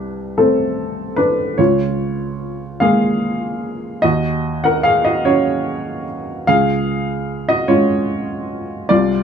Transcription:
0.00 1.55 C2 soft
0.00 0.33 D4 medium
0.00 0.37 B4 medium
0.38 1.55 A3 soft
0.38 1.14 C4 soft
0.38 1.18 A4 medium
1.16 1.56 D4 medium
1.16 1.58 B4 medium
1.58 3.98 C#2 soft
1.58 2.77 F4 soft
1.58 2.80 C#5 medium
2.80 3.98 G#3 soft
2.80 3.98 A#3 soft
2.80 3.98 G#4 medium
2.80 4.02 F5 medium
4.02 6.43 D#2 soft
4.02 4.60 F#4 medium
4.02 4.63 D#5 medium
4.64 4.83 A#4 medium
4.64 4.84 F#5 medium
4.83 5.03 G#4 medium
4.83 5.04 F5 medium
5.05 5.24 F#4 medium
5.05 5.25 D#5 medium
5.25 6.43 F#3 soft
5.25 6.43 C#4 soft
5.25 6.03 F#4 medium
5.25 6.06 C#5 medium
6.47 8.87 C#2 soft
6.47 7.45 G#4 medium
6.47 7.48 F5 medium
7.49 7.67 F#4 medium
7.49 7.68 D#5 medium
7.68 8.87 G#3 soft
7.68 8.87 C#4 soft
7.68 8.87 F4 medium
7.68 8.91 C#5 medium
8.89 9.23 C2 medium
8.89 9.23 F4 medium
8.89 9.23 D5 medium

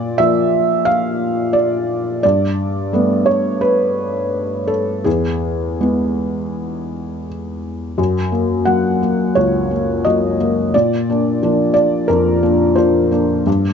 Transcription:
0.00 0.17 A#2 medium
0.00 0.18 D5 medium
0.18 2.20 F3 soft
0.18 2.20 A#3 soft
0.18 0.85 E5 medium
0.85 1.54 F5 medium
1.53 2.22 D5 medium
2.23 2.91 G2 medium
2.23 3.27 D5 medium
2.93 5.02 G3 soft
2.93 5.03 A3 soft
2.93 5.03 B3 soft
3.26 3.61 C#5 medium
3.61 4.68 B4 medium
4.68 5.05 A4 medium
5.04 5.78 E2 soft
5.04 7.26 G#4 medium
5.81 7.94 G#3 soft
5.81 7.94 B3 soft
7.98 8.32 F#2 soft
8.32 8.64 A#3 soft
8.65 8.98 F#3 soft
8.65 8.98 A#3 soft
8.65 9.36 F#5 medium
9.02 9.33 A#3 soft
9.35 9.70 C#2 soft
9.35 10.04 C#5 medium
9.71 10.02 A#3 soft
10.05 10.37 F#3 soft
10.05 10.37 A#3 soft
10.05 10.73 D#5 medium
10.41 10.71 A#3 soft
10.74 11.08 A#2 soft
10.74 11.72 D5 medium
11.10 11.39 A#3 soft
11.10 11.40 D4 soft
11.43 11.73 F3 soft
11.43 11.73 A#3 soft
11.43 11.74 D4 soft
11.74 12.06 A#3 soft
11.74 12.06 D4 soft
11.74 12.09 D5 medium
12.08 12.42 F2 soft
12.08 12.77 A#4 medium
12.43 12.74 A#3 soft
12.43 12.74 D4 soft
12.76 13.09 F3 soft
12.76 13.09 A#3 soft
12.76 13.09 D4 soft
12.76 13.46 C5 medium
13.11 13.43 A#3 soft
13.11 13.43 D4 soft
13.47 13.73 G2 soft

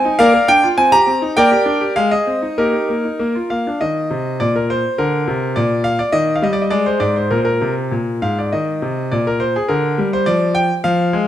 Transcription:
0.00 0.19 G#5 loud
0.05 0.19 D#4 medium
0.19 0.33 A#3 medium
0.19 0.33 A#4 loud
0.19 0.47 D5 medium
0.19 0.48 F5 loud
0.34 0.49 A#4 medium
0.48 0.64 D4 medium
0.48 0.66 G5 loud
0.63 0.78 F4 medium
0.77 0.92 C4 medium
0.77 0.92 G#5 loud
0.92 1.07 G4 medium
0.92 1.32 A#5 loud
1.07 1.22 C4 medium
1.22 1.36 D#4 medium
1.37 1.51 A#3 medium
1.37 1.92 A#4 loud
1.37 1.93 D5 loud
1.37 1.92 G5 loud
1.52 1.67 G4 medium
1.66 1.81 D4 medium
1.81 1.96 G4 medium
1.96 2.11 G#3 medium
1.96 2.11 F5 loud
2.11 2.27 G#4 medium
2.11 2.57 D#5 medium
2.27 2.43 C4 medium
2.42 2.57 D#4 medium
2.58 2.73 A#3 medium
2.58 3.03 D#4 medium
2.58 2.71 G4 medium
2.58 3.47 A#4 medium
2.73 2.89 G4 soft
2.89 3.05 A#3 medium
3.05 3.20 D#4 soft
3.19 3.34 A#3 medium
3.35 3.51 F4 medium
3.50 3.67 A#3 medium
3.50 3.81 F5 medium
3.67 3.81 D4 soft
3.81 4.09 D#3 medium
3.81 4.40 D#5 medium
4.11 4.39 C3 medium
4.40 4.82 A#2 medium
4.40 4.55 D5 medium
4.56 4.70 A#4 medium
4.70 4.98 C5 medium
4.98 5.26 D3 medium
4.98 5.55 A#4 medium
5.28 5.54 C3 medium
5.56 5.98 A#2 medium
5.56 5.85 D5 medium
5.84 5.99 F5 loud
5.99 6.13 D5 medium
6.12 6.41 D#3 medium
6.12 6.35 D#5 loud
6.36 6.45 F5 medium
6.42 6.70 G3 medium
6.42 6.53 D#5 medium
6.53 6.62 D5 medium
6.62 6.71 D#5 medium
6.70 6.99 G#3 medium
6.70 6.86 D5 medium
6.86 7.01 C5 medium
7.00 7.29 G#2 medium
7.00 7.16 D5 medium
7.16 7.31 C5 medium
7.31 7.60 A#2 medium
7.31 7.38 A#4 medium
7.38 7.45 C5 medium
7.45 7.73 A#4 medium
7.62 7.90 C3 medium
7.91 8.20 A#2 medium
8.22 8.51 G#2 medium
8.22 8.37 F5 medium
8.39 8.53 D5 medium
8.52 8.81 D#3 medium
8.52 9.12 D#5 medium
8.82 9.10 C3 medium
9.12 9.53 A#2 medium
9.12 9.26 D5 medium
9.27 9.41 A#4 medium
9.40 9.55 C5 medium
9.56 9.70 G#4 medium
9.68 9.96 D3 medium
9.68 10.08 A#4 medium
9.98 10.25 G3 medium
10.13 10.27 C5 medium
10.26 10.68 F3 medium
10.26 10.52 D5 medium
10.55 10.72 G5 loud
10.84 11.12 F3 medium
10.84 11.28 F5 loud
11.13 11.28 G#3 medium

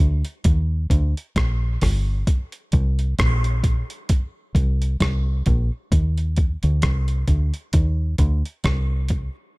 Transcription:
0.00 0.22 D2 medium
0.25 closed hi-hat medium
0.44 0.86 D#2 medium
0.44 kick loud
0.44 closed hi-hat loud
0.90 1.13 D2 medium
0.90 kick medium
0.90 closed hi-hat medium
1.17 closed hi-hat medium
1.36 1.77 A#1 medium
1.36 kick loud
1.36 cross-stick loud
1.36 closed hi-hat medium
1.81 2.22 G1 loud
1.81 kick medium
1.81 cross-stick medium
1.81 open hi-hat medium
2.27 kick loud
2.27 closed hi-hat loud
2.52 closed hi-hat soft
2.72 3.13 C2 loud
2.72 kick medium
2.72 closed hi-hat medium
2.99 closed hi-hat soft
3.19 3.82 A#1 medium
3.19 kick loud
3.19 cross-stick loud
3.19 closed hi-hat medium
3.44 closed hi-hat medium
3.64 kick medium
3.64 closed hi-hat medium
3.90 closed hi-hat medium
4.09 kick loud
4.09 closed hi-hat medium
4.55 4.95 C2 medium
4.55 kick medium
4.55 closed hi-hat medium
4.82 closed hi-hat medium
5.00 5.41 C2 loud
5.00 kick loud
5.00 cross-stick loud
5.00 closed hi-hat medium
5.46 5.69 A#1 medium
5.46 kick medium
5.46 closed hi-hat medium
5.92 6.55 D#2 loud
5.92 kick loud
5.92 closed hi-hat medium
6.18 closed hi-hat soft
6.37 kick medium
6.37 closed hi-hat medium
6.63 6.81 D2 medium
6.63 closed hi-hat medium
6.82 7.23 C2 medium
6.82 kick loud
6.82 cross-stick loud
6.82 closed hi-hat medium
7.08 closed hi-hat medium
7.28 7.51 D2 medium
7.28 kick medium
7.28 closed hi-hat medium
7.54 closed hi-hat medium
7.73 8.14 D#2 medium
7.73 kick loud
7.73 closed hi-hat loud
8.18 8.42 D2 medium
8.18 kick medium
8.18 closed hi-hat medium
8.46 closed hi-hat medium
8.64 9.28 C2 medium
8.64 kick loud
8.64 cross-stick loud
8.64 closed hi-hat medium
9.09 kick medium
9.09 closed hi-hat medium

